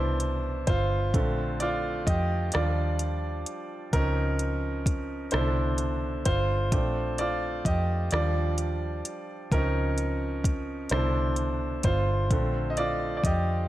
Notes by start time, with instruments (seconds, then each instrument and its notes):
Already playing: fingered electric bass C2, grand piano B2 E3 D4 E4 C5
0.20 closed hi-hat
0.67 fingered electric bass G1, grand piano F4 C5, kick, closed hi-hat
1.14 fingered electric bass A#1, grand piano D3 A3 C4, kick, closed hi-hat
1.60 grand piano F4 D5, closed hi-hat
2.07 fingered electric bass F2, grand piano G4 D#5, kick, closed hi-hat
2.52 fingered electric bass D#2, grand piano F3 G3 D4 D5, cross-stick, closed hi-hat
2.56 grand piano F4
2.99 closed hi-hat
3.46 closed hi-hat
3.93 fingered electric bass C#2, grand piano F3 C4 C#4 D#4 A#4, kick, closed hi-hat
4.39 closed hi-hat
4.86 kick, closed hi-hat
5.31 fingered electric bass C2, grand piano B2 D3 D4 E4 C5, cross-stick, closed hi-hat
5.78 closed hi-hat
6.25 fingered electric bass G1, grand piano F4 C5, kick, closed hi-hat
6.72 fingered electric bass A#1, grand piano A3 C4 D4, kick, closed hi-hat
7.18 grand piano F4 D5, closed hi-hat
7.65 fingered electric bass F2, grand piano G4 D#5, kick, closed hi-hat
8.11 fingered electric bass D#2, grand piano F3 G3 D4 F4 D5, cross-stick, closed hi-hat
8.58 closed hi-hat
9.05 closed hi-hat
9.52 fingered electric bass C#2, grand piano F3 C4 C#4 D#4 A#4, kick, closed hi-hat
9.98 closed hi-hat
10.44 kick, closed hi-hat
10.89 fingered electric bass C2, grand piano B2 D3 D4 C5, cross-stick, closed hi-hat
10.93 grand piano E4
11.36 closed hi-hat
11.83 fingered electric bass G1, grand piano F4 C5, kick, closed hi-hat
12.31 fingered electric bass A#1, grand piano D3 A3 C4, kick, closed hi-hat
12.70 grand piano D#5
12.77 grand piano F4 D5, closed hi-hat
13.17 grand piano D5
13.24 fingered electric bass F2, grand piano G4 D#5, kick, closed hi-hat